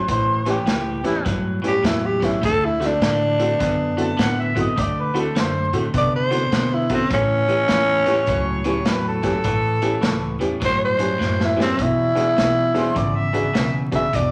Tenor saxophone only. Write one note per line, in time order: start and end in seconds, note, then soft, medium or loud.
1.67 1.85 G4 medium
1.86 2.07 E4 medium
2.06 2.26 G4 medium
2.24 2.43 E4 medium
2.45 2.66 A4 medium
2.65 2.88 E4 medium
2.86 4.56 D4 medium
5.98 6.15 D5 medium
6.16 6.76 C5 loud
6.75 6.92 E4 medium
6.94 7.12 C4 medium
7.13 8.84 C#4 loud
10.65 10.82 C5 loud
10.85 11.40 C5 medium
11.44 11.61 E4 medium
11.62 11.84 C4 medium
11.82 13.52 E4 loud
13.95 14.17 E5 medium
14.15 14.31 D5 medium